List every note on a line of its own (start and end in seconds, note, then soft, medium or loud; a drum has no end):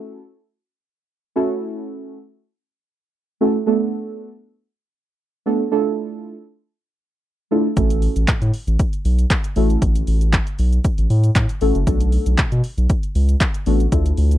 0.00 0.19 A3 medium
0.00 0.19 C#4 medium
0.00 0.19 E4 medium
0.00 0.19 F#4 medium
0.00 0.19 A4 loud
1.36 2.18 A3 medium
1.36 2.18 C#4 medium
1.36 2.18 E4 medium
1.36 2.18 F#4 medium
1.36 2.18 A4 loud
3.41 3.57 A3 medium
3.41 3.57 C#4 medium
3.41 3.57 E4 medium
3.41 3.57 F#4 medium
3.41 3.57 A4 loud
3.66 4.29 A3 medium
3.66 4.29 B3 medium
3.66 4.29 D4 medium
3.66 4.29 F#4 medium
3.66 4.29 A4 loud
5.46 5.62 A3 loud
5.46 5.62 B3 medium
5.46 5.62 D4 medium
5.46 5.62 F#4 medium
5.46 5.62 A4 loud
5.71 6.34 A3 medium
5.71 6.34 D4 medium
5.71 6.34 E4 medium
5.71 6.35 F4 medium
5.71 6.35 A4 loud
7.51 7.67 A3 medium
7.51 7.67 D4 medium
7.51 7.67 E4 medium
7.51 7.67 F4 medium
7.51 7.67 A4 loud
7.77 8.08 A1 loud
7.77 8.39 A3 medium
7.77 8.40 C#4 medium
7.77 8.40 E4 medium
7.77 8.40 F#4 medium
7.77 8.40 A4 medium
7.77 kick loud
7.77 closed hi-hat medium
7.77 shaker medium
7.90 closed hi-hat medium
7.90 shaker medium
8.02 open hi-hat medium
8.02 shaker medium
8.16 8.26 A1 loud
8.16 closed hi-hat medium
8.16 shaker medium
8.28 8.34 A2 soft
8.28 kick loud
8.28 clap loud
8.28 closed hi-hat medium
8.28 shaker medium
8.42 8.51 A2 loud
8.42 closed hi-hat medium
8.42 shaker medium
8.54 open hi-hat medium
8.54 shaker medium
8.67 8.77 A1 loud
8.67 closed hi-hat soft
8.67 shaker medium
8.79 kick loud
8.79 closed hi-hat medium
8.79 shaker medium
8.93 closed hi-hat soft
8.93 shaker soft
9.05 9.25 B1 loud
9.05 open hi-hat medium
9.05 shaker medium
9.19 closed hi-hat medium
9.19 shaker medium
9.30 kick loud
9.30 clap loud
9.30 closed hi-hat loud
9.30 shaker medium
9.44 closed hi-hat medium
9.44 shaker medium
9.56 9.77 A1 loud
9.56 10.38 A3 loud
9.56 10.39 C#4 medium
9.56 10.39 E4 medium
9.56 10.39 F#4 medium
9.56 10.39 A4 loud
9.56 open hi-hat medium
9.56 shaker medium
9.70 closed hi-hat medium
9.70 shaker medium
9.82 10.02 A1 loud
9.82 kick loud
9.82 closed hi-hat medium
9.82 shaker medium
9.95 closed hi-hat medium
9.95 shaker medium
10.07 10.39 A1 loud
10.07 open hi-hat medium
10.07 shaker medium
10.21 closed hi-hat medium
10.21 shaker medium
10.33 kick loud
10.33 clap loud
10.33 closed hi-hat medium
10.33 shaker medium
10.47 closed hi-hat soft
10.47 shaker medium
10.59 10.79 B1 loud
10.59 open hi-hat medium
10.59 shaker medium
10.73 closed hi-hat soft
10.73 shaker medium
10.84 kick loud
10.84 closed hi-hat medium
10.84 shaker medium
10.98 11.08 A1 loud
10.98 closed hi-hat soft
10.98 shaker soft
11.10 11.30 A2 loud
11.10 open hi-hat medium
11.10 shaker medium
11.24 closed hi-hat medium
11.24 shaker medium
11.35 11.46 A2 loud
11.35 kick loud
11.35 clap loud
11.35 closed hi-hat medium
11.35 shaker medium
11.49 closed hi-hat medium
11.49 shaker medium
11.61 11.72 A1 loud
11.61 11.77 A3 medium
11.61 11.77 C#4 medium
11.61 11.78 E4 medium
11.61 11.78 F#4 medium
11.61 11.78 A4 loud
11.61 open hi-hat medium
11.61 shaker medium
11.75 11.85 F#1 medium
11.75 closed hi-hat medium
11.75 shaker medium
11.87 12.18 B1 loud
11.87 12.50 A3 medium
11.87 12.50 B3 medium
11.87 12.50 D4 medium
11.87 12.50 F#4 medium
11.87 12.50 A4 loud
11.87 kick loud
11.87 closed hi-hat medium
11.87 shaker medium
12.01 closed hi-hat medium
12.01 shaker medium
12.12 open hi-hat medium
12.12 shaker medium
12.26 12.36 B1 loud
12.26 closed hi-hat medium
12.26 shaker medium
12.38 12.44 B2 soft
12.38 kick loud
12.38 clap loud
12.38 closed hi-hat medium
12.38 shaker medium
12.52 12.61 B2 loud
12.52 closed hi-hat medium
12.52 shaker soft
12.64 open hi-hat medium
12.64 shaker medium
12.78 12.87 B1 medium
12.78 closed hi-hat soft
12.78 shaker medium
12.90 kick loud
12.90 closed hi-hat medium
12.90 shaker medium
13.03 closed hi-hat soft
13.03 shaker soft
13.15 13.36 C#2 loud
13.15 open hi-hat medium
13.15 shaker medium
13.29 closed hi-hat medium
13.29 shaker medium
13.41 kick loud
13.41 clap loud
13.41 closed hi-hat loud
13.41 shaker loud
13.54 closed hi-hat medium
13.54 shaker medium
13.66 13.87 A1 loud
13.66 13.83 A3 medium
13.66 13.83 B3 medium
13.66 13.83 D4 medium
13.66 13.83 F#4 medium
13.66 13.83 A4 loud
13.66 open hi-hat medium
13.66 shaker medium
13.80 closed hi-hat medium
13.80 shaker medium
13.92 14.12 D2 loud
13.92 14.38 A3 medium
13.92 14.38 D4 medium
13.92 14.38 E4 medium
13.92 14.38 F4 medium
13.92 14.38 A4 loud
13.92 kick loud
13.92 closed hi-hat medium
13.92 shaker medium
14.06 closed hi-hat medium
14.06 shaker medium
14.17 14.38 D2 loud
14.17 open hi-hat medium
14.17 shaker medium
14.31 closed hi-hat medium
14.31 shaker medium